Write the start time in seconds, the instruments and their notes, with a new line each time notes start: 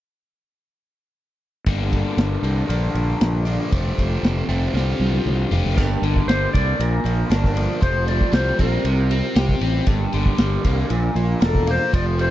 1.66 fingered electric bass G1, overdriven electric guitar G2 D3 G3 A#3, harmonium G2 D3, kick, ride
1.70 overdriven electric guitar D4
1.92 kick, ride
2.17 fingered electric bass G1, snare, ride
2.42 fingered electric bass C2, overdriven electric guitar G2 D3 G3 A#3 D4, ride
2.68 fingered electric bass A#1, overdriven electric guitar A#2 F3 A#3 D4, ride
2.94 fingered electric bass A#1, ride
3.21 fingered electric bass A#1, snare, ride
3.45 overdriven electric guitar A#2 F3 A#3 D4, ride
3.72 fingered electric bass F1, overdriven electric guitar F2 C3 F3 A3 C4, kick, ride
3.98 fingered electric bass F1, kick, ride
4.23 fingered electric bass F1, snare, ride
4.49 fingered electric bass F1, overdriven electric guitar F2 C3 F3 A3 C4, ride
4.74 fingered electric bass C2, overdriven electric guitar C3 F3 C4 F4 G4, snare
5.00 fingered electric bass C2, high tom
5.14 high tom
5.25 fingered electric bass C2, mid tom
5.51 fingered electric bass F1, overdriven electric guitar C3 F3 C4 F4 G4, floor tom
5.64 floor tom
5.76 fingered electric bass G1, overdriven electric guitar G2, tonewheel organ A#3 D4 G4 A#4, kick, crash
6.02 fingered electric bass G1, overdriven electric guitar D3, ride
6.16 kick
6.27 fingered electric bass G1, overdriven electric guitar D3, electric slide guitar C5, snare, ride
6.53 fingered electric bass C2, overdriven electric guitar G3, electric slide guitar D5, kick, ride
6.79 fingered electric bass A#1, overdriven electric guitar A#2, tonewheel organ F4, electric slide guitar A#4, ride
7.04 fingered electric bass A#1, overdriven electric guitar F3, ride
7.30 fingered electric bass G1, overdriven electric guitar D4, snare, ride
7.44 kick, snare
7.57 overdriven electric guitar F3, ride
7.81 fingered electric bass F1, overdriven electric guitar F3, tonewheel organ A3 C4 G4, electric slide guitar C5, kick, ride
8.08 overdriven electric guitar G3, electric slide guitar D5, ride
8.21 kick
8.32 fingered electric bass C2, overdriven electric guitar G3, electric slide guitar C5, snare, ride
8.58 fingered electric bass A#1, overdriven electric guitar C4, electric slide guitar A#4, kick, ride
8.84 fingered electric bass C2, overdriven electric guitar C3, tonewheel organ G3 F4, ride
9.11 overdriven electric guitar C4, ride
9.36 fingered electric bass C2, overdriven electric guitar G4, snare, ride
9.49 kick
9.61 fingered electric bass A1, overdriven electric guitar C4, ride
9.86 fingered electric bass G1, overdriven electric guitar G2, tonewheel organ G3 A#3 D4 G4, kick, ride
10.13 fingered electric bass G1, overdriven electric guitar D3, ride
10.26 kick
10.38 fingered electric bass G1, overdriven electric guitar G3, snare, ride
10.64 fingered electric bass C2, overdriven electric guitar A#3, kick, ride
10.90 fingered electric bass A#1, overdriven electric guitar A#2, tonewheel organ F3 A#3 F4, ride
11.15 fingered electric bass A#1, overdriven electric guitar A#3, ride
11.41 fingered electric bass E1, overdriven electric guitar A#4, snare, ride
11.45 electric slide guitar A4
11.55 kick
11.67 overdriven electric guitar A#3, electric slide guitar C5, ride
11.93 fingered electric bass F1, overdriven electric guitar F3, tonewheel organ A3 C4 G4, electric slide guitar D5, kick, ride
12.19 overdriven electric guitar G3, electric slide guitar C5, ride